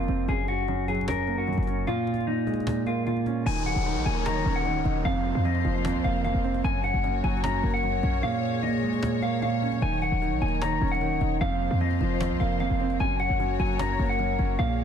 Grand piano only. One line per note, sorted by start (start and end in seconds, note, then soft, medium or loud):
0.00 0.31 F2 loud
0.00 0.28 F3 medium
0.00 0.28 A#3 medium
0.09 0.28 C4 medium
0.28 0.67 F#2 medium
0.68 1.06 F#2 medium
0.88 1.87 F#3 medium
1.08 1.46 F#2 medium
1.28 1.87 A#3 medium
1.48 1.87 F#2 medium
1.67 1.87 C#4 medium
1.87 2.26 A#2 loud
2.27 2.65 A#2 medium
2.47 3.46 G#3 medium
2.67 3.05 A#2 medium
2.87 3.46 A#3 medium
3.06 3.46 A#2 medium
3.26 3.46 C#4 medium
3.46 3.84 D#3 medium
3.86 4.24 D#3 medium
4.06 5.05 A#3 medium
4.26 4.64 D#3 medium
4.46 5.05 C#4 medium
4.65 5.05 D#3 medium
4.85 5.05 D#4 medium
5.05 5.43 F2 loud
5.45 5.83 F2 medium
5.65 6.64 F3 medium
5.85 6.23 F2 loud
6.05 6.64 A#3 medium
6.25 6.64 F2 medium
6.44 6.64 C4 medium
6.64 7.02 F#2 medium
7.04 7.42 F#2 medium
7.24 8.23 F#3 medium
7.44 7.82 F#2 medium
7.63 8.23 A#3 medium
7.84 8.23 F#2 medium
8.03 8.23 C#4 medium
8.23 8.62 A#2 loud
8.63 9.01 A#2 medium
8.83 9.82 G#3 medium
9.03 9.41 A#2 medium
9.22 9.82 A#3 medium
9.42 9.82 A#2 medium
9.62 9.82 C#4 medium
9.82 10.20 D#3 medium
10.22 10.60 D#3 medium
10.42 11.41 A#3 medium
10.61 11.00 D#3 medium
10.81 11.41 C#4 medium
11.01 11.41 D#3 medium
11.21 11.41 D#4 medium
11.41 11.79 F2 loud
11.81 12.19 F2 medium
12.01 13.00 F3 medium
12.20 12.59 F2 medium
12.40 13.00 A#3 medium
12.60 13.00 F2 medium
12.80 13.00 C4 medium
13.00 13.38 F#2 medium
13.40 13.78 F#2 medium
13.59 14.59 F#3 medium
13.79 14.18 F#2 medium
13.99 14.59 A#3 medium
14.19 14.59 F#2 medium
14.39 14.59 C#4 medium
14.59 14.84 A#2 loud